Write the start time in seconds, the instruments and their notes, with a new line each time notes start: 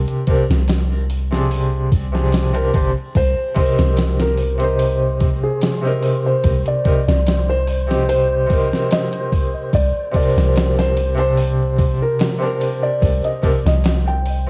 Already playing: harpsichord C3 C4 D4 A#4
0.08 closed hi-hat
0.27 harpsichord C3 C4 D4 A#4, kick, open hi-hat
0.50 808-style bass C2, snare
0.68 snare, open hi-hat
1.10 open hi-hat
1.31 harpsichord C3 C4 D4 G#4, snare
1.51 open hi-hat
1.92 808-style bass C2, kick, open hi-hat
2.12 harpsichord C3 C4 D4 G#4, snare
2.33 snare, open hi-hat
2.53 harpsichord C3 C4 D4 A#4, closed hi-hat
2.74 808-style bass G1, harpsichord C3 C4 D4 C5, kick, open hi-hat
3.15 808-style bass C2, synth texture C5, felt piano C5, kick, open hi-hat
3.55 harpsichord C3 C4, felt piano C5, kick, open hi-hat
3.59 harpsichord D#4 A#4
3.79 808-style bass C2, snare
3.97 snare, open hi-hat
4.20 felt piano A#4, snare
4.37 open hi-hat
4.58 harpsichord C3 C4, closed hi-hat
4.62 harpsichord D#4 C5, felt piano A#4
4.79 open hi-hat
5.20 kick, open hi-hat
5.43 felt piano G#4
5.61 snare, open hi-hat
5.81 harpsichord C3 C4 D#4
5.87 harpsichord A#4
6.03 open hi-hat
6.26 felt piano C5
6.44 808-style bass C2, kick, open hi-hat
6.66 felt piano D5, closed hi-hat
6.85 harpsichord C3 C4 D#4 A#4, kick, open hi-hat
7.08 808-style bass C2, felt piano D5, snare
7.27 snare, open hi-hat
7.50 felt piano C5
7.68 open hi-hat
7.87 harpsichord C3 C4 D#4 G4, snare
8.09 felt piano C5, open hi-hat
8.47 harpsichord C3 C4, kick, open hi-hat
8.51 harpsichord D#4 A#4
8.73 snare
8.91 felt piano D#5, snare, open hi-hat
9.13 closed hi-hat
9.32 kick, open hi-hat
9.73 808-style bass C2, felt piano D5, kick, open hi-hat
10.12 harpsichord C3 C4 D4, kick, open hi-hat
10.16 harpsichord A#4, felt piano D5
10.37 808-style bass C2, snare
10.56 snare, open hi-hat
10.79 felt piano C5, snare
10.97 open hi-hat
11.15 harpsichord C3 C4 D4, felt piano C5, closed hi-hat
11.21 harpsichord C5
11.38 open hi-hat
11.79 kick, open hi-hat
12.02 felt piano A#4
12.19 snare, open hi-hat
12.38 harpsichord C3 C4 D4
12.45 harpsichord A#4
12.61 open hi-hat
12.83 felt piano D5
13.02 808-style bass C2, kick, open hi-hat
13.24 felt piano D#5, closed hi-hat
13.42 harpsichord C3 C4 D4 A#4, kick, open hi-hat
13.65 808-style bass C2, felt piano D#5, snare
13.84 snare, open hi-hat
14.07 felt piano G5
14.25 open hi-hat
14.46 harpsichord C3